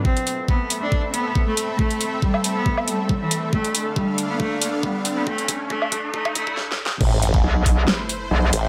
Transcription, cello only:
X:1
M:4/4
L:1/16
Q:"Swing 16ths" 1/4=138
K:Am
V:1 name="Cello"
C2 z2 B,2 z D2 z B,2 z A,2 z | A,2 z2 G,2 z B,2 z G,2 z E,2 z | A,2 z2 G,2 z B, A,2 z2 G,2 z B, | A,2 z2 A,2 z2 A,2 A,2 z4 |
z16 |]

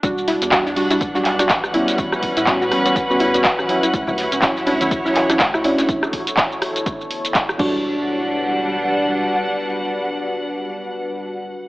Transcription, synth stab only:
X:1
M:4/4
L:1/16
Q:"Swing 16ths" 1/4=123
K:Edor
V:1 name="Synth stab"
[G,DF]4 [G,DF] z [G,DF] [G,DF] z [G,DF]2 [G,DF] z2 [G,B,CE]2- | [G,B,CE]4 [G,B,CF] z [G,B,CF] [G,B,CF] z [G,B,CF]2 [G,B,CF] z2 [F,CE]2- | [F,CE]4 [F,CE] z [F,CE] [F,CE] z [F,CE]2 [F,CE] z2 [A,CDE]2- | [A,CDE]2 z12 [G,DF]2- |
[G,DF]16- | [G,DF]16 |]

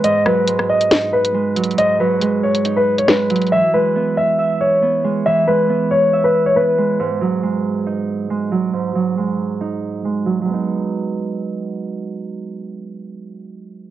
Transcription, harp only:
X:1
M:4/4
L:1/8
Q:1/4=138
K:G#m
V:1 name="Harp" clef=bass
G,, F, G,2 D2 G, F, | G,, F, G,2 D2 G, F, | E, G, B,2 e2 B, G, | E, G, B,2 e2 B, G, |
G,, F, G,2 D2 G, F, | G,, F, G,2 D2 G, F, | [F,G,B,D]8- | [F,G,B,D]8 |]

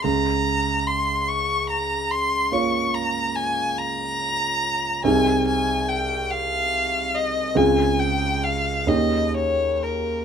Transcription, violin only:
X:1
M:12/8
L:1/8
Q:3/8=47
K:Bbdor
V:1 name="Violin"
b2 c' d' b c' d' b a b3 | a a g f2 e a g f e d B |]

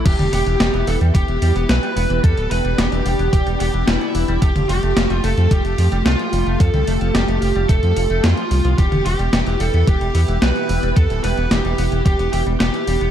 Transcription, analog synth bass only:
X:1
M:4/4
L:1/16
Q:1/4=110
K:Ephr
V:1 name="Analog synth bass" clef=bass
E,,, E,,, E,,, E,,, E,,, E,,, E,,, E,, E,,, E,,, E,, E,,, B,,, z E,,, E,,, | E,, D,,, E,,, E,,, E,,, E,,, E,,, E,,, E,,, E,,, E,,, E,,, E,,, z E,,, E,,, | F,,, F,,, F,,, F,,, F,,, F,,, F,,, F,, F,,, F,,, F,, F,,, C,, z F,,, F,,, | F,, C,, F,,, F,,, F,,, F,,, F,,, F,,, F,,, F,, F,,, F,,, F,, z C,, C,, |
E,,, E,,, E,,, E,,, E,,, E,,, E,,, E,, E,,, E,,, E,, E,,, B,,, z E,,, E,,, | E,, D,,, E,,, E,,, E,,, E,,, E,,, E,,, E,,, E,,, E,,, E,,, E,,, z E,,, E,,, |]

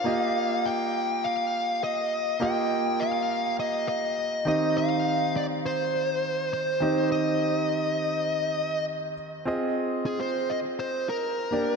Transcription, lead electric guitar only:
X:1
M:4/4
L:1/16
Q:1/4=102
K:Fm
V:1 name="Lead electric guitar"
f4 g4 f4 e4 | g4 f4 e2 e4 e2 | f4 =d2 c6 c4 | e12 z4 |
z4 A c2 e2 c2 B4- B |]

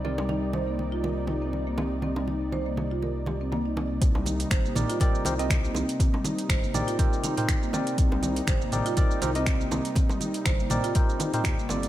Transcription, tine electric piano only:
X:1
M:4/4
L:1/16
Q:"Swing 16ths" 1/4=121
K:Cm
V:1 name="Tine electric piano"
[CEGBd]16- | [CEGBd]16 | z6 [CEGBd]2 [CEGBd]2 [CEGBc] [CEGBe]4- [CEGBe]- | [CEGBe]6 [CEGBd]2 [CEGBc]3 [CEGBc]3 [CEGBd]2- |
[CEGBd]6 [CEGBd]2 [CEGBd]2 [CEGBc] [CEGBe]4- [CEGBe]- | [CEGBe]6 [CEGBd]2 [CEGBc]3 [CEGBc]3 [B,DG=Ad]2 |]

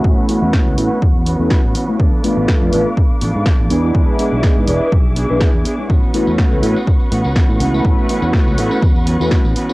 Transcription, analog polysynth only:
X:1
M:4/4
L:1/16
Q:"Swing 16ths" 1/4=123
K:A
V:1 name="Analog polysynth"
[A,CEFB]2 [A,CEFB]4 [A,CEFB]2 z3 [A,CEFB]2 z2 [A,CEFc] | z2 [A,B,D=FB]4 [A,B,DFB] z6 z [G,B,DEB] [G,B,DEB]- | [G,B,DEB]2 [G,B,DEB]4 [G,B,DEB]2 z3 [G,B,DEB]2 z2 [G,B,DEc] | z2 [A,CEFB]4 [A,CEFB] z6 z [A,CEFB] [A,CEFB]- |
[A,CEFB]2 [A,CEFB]4 [A,CEFB]2 z3 [A,CEFB]2 z2 [A,CEFc] |]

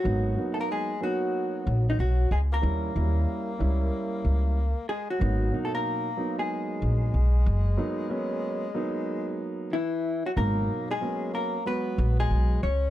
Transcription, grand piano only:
X:1
M:4/4
L:1/16
Q:"Swing 16ths" 1/4=93
K:G#m
V:1 name="Grand piano"
[F,A,B,D]2 [F,A,B,D]3 z [F,A,B,D]6 z4 | [=G,A,CE]2 [F,G,A,CE]3 z [G,A,CE]6 z4 | [F,A,B,D]2 [B,,F,A,D]3 z [F,A,B,D]6 z4 | [F,A,B,D]2 [F,A,B,C]3 z [F,A,B,D]6 z4 |
[B,,F,A,D]3 z [F,A,B,C]3 z [F,G,B,F]6 z2 |]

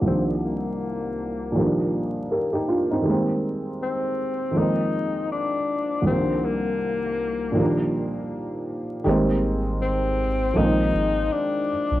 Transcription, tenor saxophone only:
X:1
M:4/4
L:1/8
Q:"Swing 16ths" 1/4=80
K:Ablyd
V:1 name="Tenor saxophone"
C B,4 z3 | z2 C2 E2 D2 | C B,4 z3 | z2 C2 E2 D2 |]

